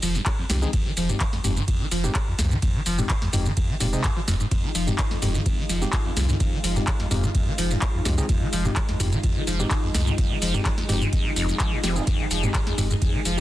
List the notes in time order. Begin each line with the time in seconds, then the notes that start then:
0.02 F1 F3, open hi-hat, shaker
0.15 F2, shaker
0.26 F3, kick, clap, ride, shaker
0.39 F2
0.50 C2 F2 G#3 C4 D#4 G4, snare, open hi-hat, shaker
0.62 F3 G#3 C4 D#4 G#4, shaker
0.73 F2, kick, snare, ride, shaker
0.86 F3
0.97 F1 F3, open hi-hat, shaker
1.09 F2 G#3 C4 D#4 G4, mid tom, shaker
1.20 F3, kick, clap, ride, shaker
1.33 F2, snare
1.44 F1 F2 G#3 C4 D#4 G4, mid tom, open hi-hat, shaker
1.57 F3, mid tom, shaker
1.68 F2, kick, ride, shaker
1.80 F3
1.91 F1 F3, open hi-hat, shaker
2.04 F2 G#3 C4 D#4 G4, shaker
2.15 F3, kick, clap, ride, shaker
2.28 F2
2.39 C2 F2, snare, open hi-hat, shaker
2.51 F3, mid tom, shaker
2.62 F2, kick, snare, ride, shaker
2.75 F3
2.86 F1 F3, open hi-hat, shaker
2.98 F2 G#3 C4 D#4 G4, mid tom, shaker
3.10 F3, kick, clap, ride, shaker
3.22 F2, snare
3.33 F1 F2 G#3 C4 D#4 G4, mid tom, open hi-hat, shaker
3.46 F3, mid tom, shaker
3.57 F2, kick, ride, shaker
3.69 F3
3.80 F1 A#2 G#3 C4 D#4 G4, open hi-hat, shaker
3.93 C3 G#3 C4 D#4 G#4, shaker
4.04 F2, kick, clap, ride, shaker
4.16 F3
4.28 F1 F2, snare, open hi-hat, shaker
4.40 G#2, shaker
4.51 F2 G#3 D#4 F4, kick, snare, ride, shaker
4.64 F3
4.75 F1 F3, open hi-hat, shaker
4.87 F2 G#3 C4 D#4 G4, mid tom, shaker
4.99 F3, kick, clap, ride, shaker
5.11 F2, snare
5.22 F1 F2 G#3 C4 D#4 G4, mid tom, open hi-hat, shaker
5.34 F3, mid tom, shaker
5.46 F2, kick, ride, shaker
5.58 F3
5.69 F1 F3, open hi-hat, shaker
5.82 F2 G#3 C4 D#4 G4, shaker
5.93 F3, kick, clap, ride, shaker
6.05 F2
6.17 C2 F2, snare, open hi-hat, shaker
6.29 F3, mid tom, shaker
6.40 F2, kick, snare, ride, shaker
6.53 F3
6.64 F1 F3, open hi-hat, shaker
6.76 F2 G#3 C4 D#4 G4, mid tom, shaker
6.87 F3, kick, clap, ride, shaker
7.00 F2, snare
7.11 F1 F2 G#3 C4 D#4 G4, mid tom, open hi-hat, shaker
7.23 F3, mid tom, shaker
7.35 F2, kick, ride, shaker
7.47 F3
7.58 F1 F3, open hi-hat, shaker
7.71 F2, shaker
7.82 F3, kick, clap, ride, shaker
7.94 F2
8.05 C2 F2 G#3 C4 D#4 G4, snare, open hi-hat, shaker
8.18 F3 G#3 C4 D#4 G#4, shaker
8.29 F2, kick, snare, ride, shaker
8.41 F3
8.53 F1 F3, open hi-hat, shaker
8.65 F2 G#3 C4 D#4 G4, mid tom, shaker
8.76 F3, kick, clap, ride, shaker
8.89 F2, snare
9.00 F1 F2 G#3 C4 D#4 G4, mid tom, open hi-hat, shaker
9.12 F3, mid tom, shaker
9.24 F2, kick, ride, shaker
9.36 F3
9.47 F1 F3, open hi-hat, shaker
9.60 F2 G#3 C4 D#4 G4, shaker
9.71 F3, kick, clap, ride, shaker
9.83 F2
9.94 C2 F2, snare, open hi-hat, shaker
10.07 F3, mid tom, shaker
10.18 F2, kick, snare, ride, shaker
10.31 F3
10.42 F1 F3, open hi-hat, shaker
10.54 F2 G#3 C4 D#4 G4, mid tom, shaker
10.65 F3, kick, clap, ride, shaker
10.78 F2, snare
10.89 F1 F2 G#3 C4 D#4 G4, mid tom, open hi-hat, shaker
11.01 F3, mid tom, shaker
11.13 F2, kick, ride, shaker
11.25 F3
11.36 F1 F2, open hi-hat, shaker
11.49 F2, shaker
11.60 F3, kick, clap, ride, shaker
11.72 G#2
11.84 F1 F3 G#3 C4 D#4 G4, snare, open hi-hat, shaker
11.96 F2 G#3 C4 D#4 G#4, shaker
12.07 F2 G#4, kick, snare, ride, shaker
12.20 F3
12.31 F1 F3, open hi-hat, shaker
12.43 F2 G#3 C4 D#4 G4, mid tom, shaker
12.54 F3, kick, clap, ride, shaker
12.67 F2, snare
12.78 F1 F2 G#3 C4 D#4 G4, mid tom, open hi-hat, shaker
12.90 F2, mid tom, shaker
13.02 F2, kick, ride, shaker
13.14 F3
13.25 F1 F3, open hi-hat, shaker